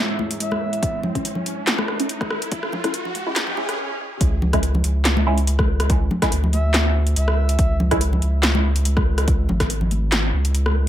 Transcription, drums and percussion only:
0.19 high conga medium
0.31 closed hi-hat medium
0.40 closed hi-hat medium
0.51 cross-stick medium
0.51 high conga medium
0.73 closed hi-hat medium
0.83 kick loud
0.83 closed hi-hat medium
1.03 low conga loud
1.15 kick medium
1.15 closed hi-hat medium
1.25 closed hi-hat medium
1.35 low conga medium
1.46 closed hi-hat medium
1.67 snare loud
1.67 clap medium
1.67 closed hi-hat medium
1.78 cross-stick medium
1.78 high conga medium
1.88 cross-stick medium
2.00 closed hi-hat medium
2.09 closed hi-hat medium
2.21 kick loud
2.21 cross-stick soft
2.21 high conga medium
2.31 cross-stick medium
2.42 closed hi-hat soft
2.52 kick loud
2.52 closed hi-hat medium
2.63 cross-stick medium
2.72 high conga medium
2.72 low conga loud
2.84 kick medium
2.84 cross-stick medium
2.84 closed hi-hat medium
2.94 closed hi-hat medium
3.05 low conga medium
3.15 closed hi-hat soft
3.15 high conga medium
3.36 snare loud
3.36 clap medium
3.36 closed hi-hat medium
3.47 low conga medium
3.57 high conga medium
3.69 cross-stick medium
3.69 closed hi-hat medium
4.21 kick loud
4.21 closed hi-hat medium
4.42 low conga medium
4.53 kick medium
4.53 cross-stick medium
4.53 closed hi-hat medium
4.63 closed hi-hat medium
4.75 low conga medium
4.84 closed hi-hat medium
5.05 snare loud
5.05 clap medium
5.05 closed hi-hat medium
5.17 high conga loud
5.38 closed hi-hat medium
5.47 closed hi-hat medium
5.59 kick loud
5.59 cross-stick medium
5.59 high conga medium
5.80 cross-stick medium
5.80 closed hi-hat medium
5.90 kick loud
5.90 closed hi-hat medium
6.11 high conga medium
6.11 low conga medium
6.22 kick medium
6.22 cross-stick medium
6.22 snare soft
6.22 closed hi-hat medium
6.32 closed hi-hat medium
6.44 low conga medium
6.53 closed hi-hat medium
6.53 high conga medium
6.74 snare loud
6.74 clap medium
6.74 closed hi-hat medium
7.07 closed hi-hat medium
7.16 closed hi-hat medium
7.28 cross-stick medium
7.49 closed hi-hat medium
7.59 kick loud
7.59 closed hi-hat medium
7.80 low conga loud
7.91 kick medium
7.91 cross-stick medium
7.91 closed hi-hat medium
8.01 closed hi-hat medium
8.13 low conga medium
8.22 closed hi-hat medium
8.43 snare loud
8.43 clap medium
8.43 closed hi-hat medium
8.55 high conga loud
8.76 closed hi-hat medium
8.85 closed hi-hat medium
8.97 kick loud
8.97 cross-stick medium
8.97 high conga medium
9.18 cross-stick medium
9.18 closed hi-hat soft
9.28 kick loud
9.28 closed hi-hat medium
9.49 high conga medium
9.49 low conga loud
9.60 kick medium
9.60 cross-stick medium
9.60 snare soft
9.60 closed hi-hat soft
9.70 closed hi-hat medium
9.81 low conga medium
9.91 closed hi-hat soft
9.91 high conga medium
10.12 snare loud
10.12 clap medium
10.12 closed hi-hat medium
10.45 closed hi-hat medium
10.55 closed hi-hat medium
10.66 cross-stick medium
10.66 high conga medium

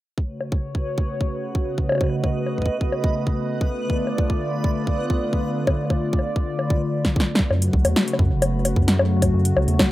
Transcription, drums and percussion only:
0.18 kick medium
0.41 high bongo soft
0.52 kick loud
0.75 kick medium
0.98 kick loud
1.21 kick loud
1.55 kick loud
1.78 kick medium
1.89 high bongo medium
1.92 high bongo medium
1.95 high bongo soft
1.98 kick loud
1.98 high bongo soft
2.01 high bongo soft
2.04 high bongo soft
2.06 high bongo soft
2.09 high bongo soft
2.23 kick loud
2.23 high bongo soft
2.46 high bongo soft
2.58 kick soft
2.62 kick medium
2.66 kick medium
2.81 kick loud
2.92 high bongo soft
3.04 kick loud
3.27 kick loud
3.61 kick loud
3.90 kick loud
4.07 high bongo soft
4.18 kick loud
4.30 kick loud
4.64 kick loud
4.87 kick loud
5.10 kick loud
5.33 kick loud
5.67 kick loud
5.67 high bongo medium
5.90 kick loud
5.90 high bongo soft
6.13 kick loud
6.19 high bongo soft
6.36 kick loud
6.59 high bongo soft
6.70 kick loud
7.05 kick loud
7.05 snare medium
7.16 kick loud
7.16 snare medium
7.35 kick loud
7.35 snare medium
7.51 high bongo medium
7.62 closed hi-hat medium
7.73 kick loud
7.85 closed hi-hat medium
7.85 high bongo medium
7.96 snare loud
8.08 closed hi-hat soft
8.13 high bongo medium
8.19 kick loud
8.42 closed hi-hat medium
8.42 high bongo medium
8.65 closed hi-hat medium
8.65 high bongo medium
8.76 kick loud
8.88 snare loud
8.88 closed hi-hat medium
8.99 high bongo medium
9.22 kick loud
9.22 closed hi-hat medium
9.22 high bongo medium
9.45 closed hi-hat medium
9.57 high bongo medium
9.68 closed hi-hat soft
9.79 kick loud
9.79 snare loud
9.79 high bongo medium

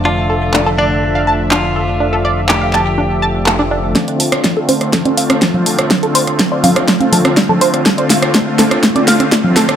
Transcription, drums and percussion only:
0.54 clap loud
1.51 clap loud
2.49 clap loud
2.73 clap medium
3.46 clap loud
3.96 kick loud
3.96 snare soft
3.96 closed hi-hat medium
4.08 closed hi-hat soft
4.20 open hi-hat loud
4.32 cross-stick medium
4.32 closed hi-hat medium
4.44 kick loud
4.44 snare soft
4.44 closed hi-hat medium
4.69 open hi-hat loud
4.69 high conga medium
4.81 cross-stick soft
4.81 closed hi-hat medium
4.93 kick loud
4.93 snare medium
4.93 closed hi-hat medium
5.05 closed hi-hat soft
5.05 high conga medium
5.17 open hi-hat loud
5.30 cross-stick medium
5.30 closed hi-hat medium
5.30 high conga medium
5.42 kick loud
5.42 snare medium
5.42 closed hi-hat medium
5.54 low conga medium
5.66 open hi-hat loud
5.79 cross-stick medium
5.79 closed hi-hat medium
5.91 kick loud
5.91 snare medium
5.91 closed hi-hat medium
6.03 closed hi-hat soft
6.15 open hi-hat loud
6.27 cross-stick soft
6.27 closed hi-hat medium
6.39 kick loud
6.39 snare medium
6.39 closed hi-hat medium
6.64 open hi-hat loud
6.64 high conga medium
6.64 low conga medium
6.76 cross-stick medium
6.76 closed hi-hat medium
6.88 kick loud
6.88 snare medium
6.88 closed hi-hat medium
7.00 closed hi-hat soft
7.00 high conga medium
7.12 open hi-hat loud
7.12 low conga medium
7.25 cross-stick medium
7.25 closed hi-hat medium
7.25 high conga medium
7.37 kick loud
7.37 snare medium
7.37 closed hi-hat medium
7.49 low conga medium
7.61 open hi-hat loud
7.74 cross-stick soft
7.74 closed hi-hat medium
7.86 kick loud
7.86 snare medium
7.86 closed hi-hat medium
7.98 closed hi-hat soft
8.10 snare medium
8.10 open hi-hat loud
8.22 cross-stick medium
8.22 closed hi-hat medium
8.35 kick loud
8.35 snare medium
8.35 closed hi-hat medium
8.59 snare medium
8.59 open hi-hat loud
8.59 high conga medium
8.71 cross-stick medium
8.71 closed hi-hat medium
8.83 kick loud
8.83 snare medium
8.83 closed hi-hat medium
8.96 closed hi-hat soft
8.96 high conga medium
9.08 snare medium
9.08 open hi-hat loud
9.20 cross-stick soft
9.20 closed hi-hat soft
9.20 high conga medium
9.32 kick loud
9.32 snare medium
9.32 closed hi-hat medium
9.44 low conga medium
9.56 snare medium
9.56 open hi-hat loud
9.69 cross-stick medium
9.69 closed hi-hat soft

